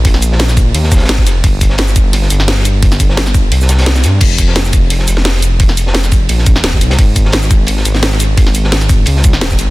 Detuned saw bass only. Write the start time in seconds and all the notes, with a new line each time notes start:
Already playing: A#1
0.74 D#2
1.01 G#1
1.26 F1
1.44 G1
2.31 G1
3.52 C2
4.04 G2
4.21 F1
5.08 F1
6.29 A#1
6.56 D#1
6.81 C2
6.99 G#1
7.85 G#1
9.07 C#2
9.33 F#1
9.41 D#1
9.59 G#1